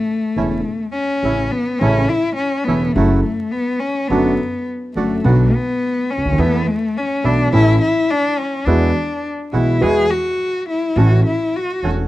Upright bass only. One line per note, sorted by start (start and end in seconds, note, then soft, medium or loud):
0.36 0.61 E1 medium
1.23 1.47 A1 medium
1.81 2.05 A1 loud
2.67 2.91 E1 medium
2.95 3.20 F#1 medium
4.10 4.34 F#1 medium
4.95 5.20 F#1 medium
5.24 5.48 B1 medium
6.17 6.24 C#2 medium
6.25 6.31 D2 medium
6.31 6.37 D#2 medium
6.38 6.62 E2 loud
7.24 7.48 B1 medium
7.52 7.77 A1 medium
8.66 8.91 E2 medium
9.53 9.77 B1 medium
9.82 10.06 E2 medium
10.96 11.21 A1 loud
11.83 12.07 E1 medium